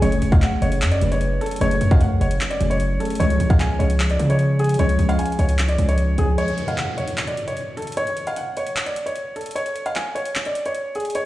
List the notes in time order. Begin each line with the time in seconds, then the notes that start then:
0.01 F#1 F#3 A3 C#4 G#4 C#5, closed hi-hat
0.12 closed hi-hat
0.22 F#1, closed hi-hat
0.31 F#3 A3 C#4 G#4 C#5 F5, kick, closed hi-hat
0.42 F#5, clap, closed hi-hat
0.61 F#1 F#3 A3 C#4 G#4 C#5, closed hi-hat
0.72 closed hi-hat
0.82 F#2, clap, closed hi-hat
0.92 D5, closed hi-hat
1.01 F#1 F#3 A3 C#4 G#4 B4, closed hi-hat
1.12 C#5, closed hi-hat
1.21 closed hi-hat
1.41 A4, closed hi-hat
1.46 closed hi-hat
1.51 closed hi-hat
1.56 F#3, closed hi-hat
1.60 F#1 A3 C#4 G#4 C#5, closed hi-hat
1.71 closed hi-hat
1.81 F#2, closed hi-hat
1.90 F#3 A3 C#4 G#4 C#5 F5, kick, closed hi-hat
2.01 F#5, closed hi-hat
2.21 F#1 C#5, closed hi-hat
2.31 closed hi-hat
2.41 clap, closed hi-hat
2.50 D5, closed hi-hat
2.60 F#1 F#3 A3 C#4 G#4 C#5, closed hi-hat
2.70 C#5, closed hi-hat
2.80 closed hi-hat
2.99 F#3 A3 C#4 G#4 A4 C#5, closed hi-hat
3.05 closed hi-hat
3.10 closed hi-hat
3.15 closed hi-hat
3.19 C#2 F3 G#3 C#4 G#4 C#5, closed hi-hat
3.30 closed hi-hat
3.40 C#2, closed hi-hat
3.49 F3 G#3 C#4 G#4 C#5 F5, kick, closed hi-hat
3.60 G#5, clap, closed hi-hat
3.79 C#2 F3 G#3 C#4 G#4 C#5, closed hi-hat
3.90 closed hi-hat
4.00 clap, closed hi-hat
4.10 D5, closed hi-hat
4.18 C#3 F3 G#3 C#4 G#4 C#5, closed hi-hat
4.30 C#5, closed hi-hat
4.39 closed hi-hat
4.59 G#4, closed hi-hat
4.64 closed hi-hat
4.69 closed hi-hat
4.74 closed hi-hat
4.78 C#2 F3 G#3 C#4 G#4 C#5, closed hi-hat
4.89 closed hi-hat
4.99 C#2, closed hi-hat
5.08 F3 G#3 C#4 G#4 C#5 F5, closed hi-hat
5.19 G#5, closed hi-hat
5.26 closed hi-hat
5.32 closed hi-hat
5.39 C#2 C#5, closed hi-hat
5.49 closed hi-hat
5.58 clap, closed hi-hat
5.68 D5, closed hi-hat
5.77 C#2 F3 G#3 C#4 G#4 C#5, closed hi-hat
5.89 C#5, closed hi-hat
5.98 closed hi-hat
6.17 C#2 F3 G#3 C#4 G#4 C#5, closed hi-hat
6.38 C#5, closed hi-hat, downlifter
6.48 closed hi-hat
6.58 closed hi-hat
6.68 F5, closed hi-hat
6.77 F#5, clap, closed hi-hat
6.97 C#5, closed hi-hat
7.08 closed hi-hat
7.17 clap, closed hi-hat
7.27 D5, closed hi-hat
7.37 closed hi-hat
7.48 C#5, closed hi-hat
7.57 closed hi-hat
7.77 A4, closed hi-hat
7.82 closed hi-hat
7.87 closed hi-hat
7.92 closed hi-hat
7.97 C#5, closed hi-hat
8.07 closed hi-hat
8.17 closed hi-hat
8.27 F5, closed hi-hat
8.36 F#5, closed hi-hat
8.57 C#5, closed hi-hat
8.67 closed hi-hat
8.76 clap, closed hi-hat
8.86 D5, closed hi-hat
8.96 closed hi-hat
9.06 C#5, closed hi-hat
9.16 closed hi-hat
9.36 A4, closed hi-hat
9.41 closed hi-hat
9.46 closed hi-hat
9.51 closed hi-hat
9.55 C#5, closed hi-hat
9.66 closed hi-hat
9.76 closed hi-hat
9.86 F5, closed hi-hat
9.95 G#5, clap, closed hi-hat
10.15 C#5, closed hi-hat
10.25 closed hi-hat
10.35 clap, closed hi-hat
10.45 D5, closed hi-hat
10.55 closed hi-hat
10.66 C#5, closed hi-hat
10.75 closed hi-hat
10.95 G#4, closed hi-hat
11.00 closed hi-hat
11.05 closed hi-hat
11.10 closed hi-hat
11.15 C#5, closed hi-hat